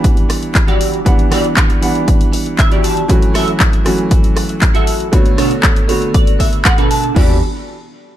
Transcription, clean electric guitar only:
0.29 muted clean electric guitar stroke
0.42 muted clean electric guitar stroke
0.67 E3 F#4 G4 D5
1.31 E3 F#4 G4 D5
1.56 muted clean electric guitar stroke
1.69 muted clean electric guitar stroke
2.33 muted clean electric guitar stroke
2.45 muted clean electric guitar stroke
2.59 E5
2.71 E3 F#4 G4 D5
2.84 A5
3.34 F#4 A4 E5
3.60 muted clean electric guitar stroke
3.72 muted clean electric guitar stroke
4.36 muted clean electric guitar stroke
4.49 muted clean electric guitar stroke
4.74 F#4 A4 E5
5.37 B2 D4 A4 C#5
5.63 muted clean electric guitar stroke
5.76 muted clean electric guitar stroke
5.89 C#5
6.14 D5
6.39 E5, muted clean electric guitar stroke
6.52 muted clean electric guitar stroke
6.65 F#5
6.77 B2 D4 A4 B4
6.91 A5
7.16 F#4 G4 D5

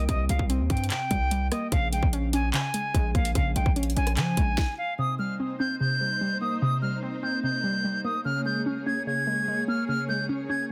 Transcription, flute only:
0.09 D#5
0.29 F5
0.70 G5
0.91 G5
1.52 D#5
1.72 F5
1.93 G5
2.33 G#5
2.54 G#5
3.15 F5
3.35 F5
3.56 G5
3.96 G#5
4.17 G#5
4.78 F5
4.99 D#6
5.19 F6
5.60 G6
5.80 G6
6.41 D#6
6.62 D#6
6.82 F6
7.23 G6
7.44 G6
8.05 D#6
8.25 F6
8.46 G6
8.87 G#6
9.07 G#6
9.68 F6
9.88 F6
10.09 G6
10.49 G#6

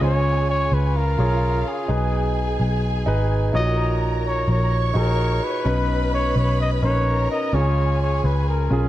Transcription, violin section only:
0.02 G#4 G#5
0.96 F4 F5
1.89 G#4 G#5
3.54 A#4 A#5
4.72 C#5 C#6
5.66 B4 B5
7.06 A#4 A#5
7.54 G#4 G#5

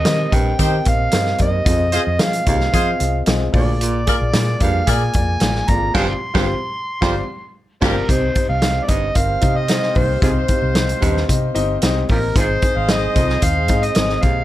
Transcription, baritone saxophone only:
0.32 G2
1.40 D#2
1.67 F2
2.48 D#2
3.55 D2
3.82 A#2
4.62 G2
5.68 F2
5.94 G2
6.35 G2
7.02 F2
7.81 D2
8.08 C3
8.89 G2
9.94 D#2
10.21 C3
11.02 G2
12.09 D#2
12.36 G#2
13.16 F2
14.23 D#2

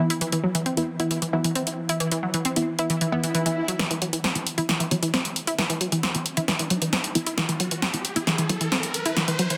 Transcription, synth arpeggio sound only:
0.10 E4
0.21 E3
0.33 E3
0.44 F#3
0.55 E3
0.66 C4
1.00 E4
1.11 E3
1.22 E3
1.33 F#3
1.44 E3
1.56 C4
1.89 E4
2.00 E3
2.12 E3
2.23 F#3
2.34 E3
2.45 C4
2.79 E4
2.90 E3
3.01 E3
3.12 B3
3.24 E3
3.35 E3
3.46 E3
3.68 F#3
3.79 E3
3.91 E3
4.02 F#3
4.13 E3
4.24 C4
4.58 E4
4.69 E3
4.80 E3
4.91 F#3
5.03 E3
5.14 C4
5.47 E4
5.58 E3
5.70 E3
5.81 F#3
5.92 E3
6.03 C4
6.37 E4
6.48 E3
6.59 E3
6.71 F#3
6.82 E3
6.93 C4
7.27 E4
7.38 E3
7.49 E3
7.60 F#3
7.71 E3
7.82 C4
8.16 E4
8.27 E3
8.39 E3
8.50 F#3
8.61 E3
8.72 C4
9.06 E4
9.17 E3
9.28 E3
9.39 F#3
9.51 E3

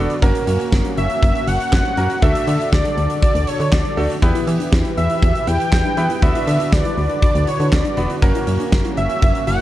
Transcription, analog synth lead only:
0.98 E5
1.23 E5
1.48 F#5
2.22 E5
2.72 D5
3.22 D5
3.47 C#5
3.72 D5
4.97 E5
5.47 G5
6.22 E5
6.73 D5
7.23 D5
7.48 C#5
7.73 D5
8.97 E5
9.47 F#5

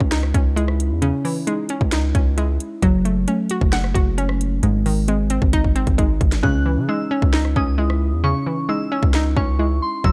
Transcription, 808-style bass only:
0.00 C#2
0.34 C#2
0.91 E2
1.81 C#2
2.15 C#2
2.82 F#1
3.61 F#1
3.95 F#1
4.63 G#1
5.42 G#1
5.87 G#1
6.21 G#1
6.43 C#2
6.77 C#3
7.22 C#2
7.56 C#2
8.13 E2
9.03 C#2
9.37 C#2
10.04 F#1

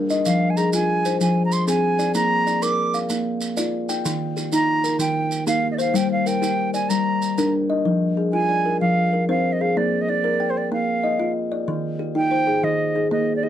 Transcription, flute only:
0.26 F5
0.50 G#5
0.57 A#5
0.74 G#5
1.22 G#5
1.45 A#5
1.53 C6
1.69 G#5
2.15 A#5
2.63 D6
4.54 A#5
5.00 G5
5.47 F5
5.71 D5 D#5
5.76 D#5 F5
5.96 G5
6.12 F5
6.27 G5
6.74 G#5
6.89 A#5
8.33 G#5
8.81 F5
9.30 F5
9.53 D#5
9.61 F5
9.77 D5
10.01 D#5
10.10 D5
10.50 C5
10.57 D5
10.73 F5
12.16 G5
12.64 D#5
13.12 D#5
13.36 D5
13.43 D#5

